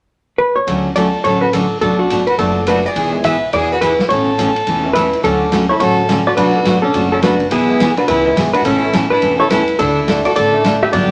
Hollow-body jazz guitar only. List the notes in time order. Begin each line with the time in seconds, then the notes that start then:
0.38 B4
0.56 C#5
0.96 D5
1.24 C#5
1.41 B4
1.53 A4
1.81 A4
1.99 F#4
2.27 B4
2.39 A4
2.68 B4
2.86 D5
3.25 E5
3.54 D5
3.72 B4
3.81 B4
4.09 C#5
4.93 E4 B4
5.24 C#4 A4
5.69 E4 C#5
5.80 F#4 C#5
6.27 F#4 D5
6.37 D4 B4
6.82 C#4 A4
7.12 C#4 A4
7.24 D4 B4
7.52 B3 G#4
7.98 D4 B4
8.08 E4 B4
8.53 D4 B4
8.65 C#4 A4
9.10 D4 B4
9.40 E4 C#5
9.51 E4 B4
9.79 D4 A4
10.25 F#4 D5
10.36 A4 D5
10.83 G4 E5
10.93 F#4 D5